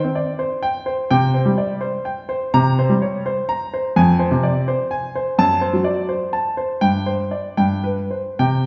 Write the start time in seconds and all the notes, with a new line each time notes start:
Already playing: C5
0.04 C4
0.15 D5
0.39 C5
0.63 G5
0.86 C5
1.10 C3 G5
1.34 C5
1.45 G3
1.58 D5
1.81 C5
2.05 G5
2.29 C5
2.54 C3 A#5
2.79 C5
2.89 G3
3.02 C#5
3.26 C5
3.49 A#5
3.74 C5
3.96 F2 G#5
4.19 C5
4.31 C3
4.43 D5
4.68 C5
4.91 G#5
5.15 C5
5.39 F#2 A5
5.61 C5
5.73 F#3
5.84 D5
6.09 C5
6.33 A5
6.57 C5
6.81 G2 G5
7.06 C5
7.31 D5
7.57 G2 G5
7.84 B4
8.11 C5
8.39 C3 G5